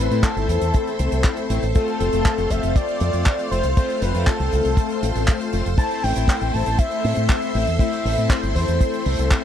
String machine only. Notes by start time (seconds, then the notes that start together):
Already playing: A4 C5 E5 C6
1.75 F5 C6
5.78 A4 E5